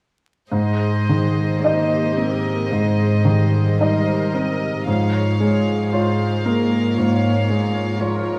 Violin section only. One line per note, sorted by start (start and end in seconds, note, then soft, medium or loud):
0.52 1.60 C5 soft
0.52 1.60 D#5 soft
1.61 2.16 C5 soft
1.61 3.80 D#5 soft
2.18 2.72 A#4 soft
2.72 3.80 C5 soft
3.82 4.33 C5 soft
3.82 4.34 D#5 soft
4.35 4.88 D#5 soft
4.88 5.92 C#5 soft
4.88 5.91 F5 soft
5.93 6.43 C5 soft
5.93 7.97 F5 soft
6.45 6.97 A#4 soft
6.97 7.99 C#5 soft
8.00 8.39 C#5 soft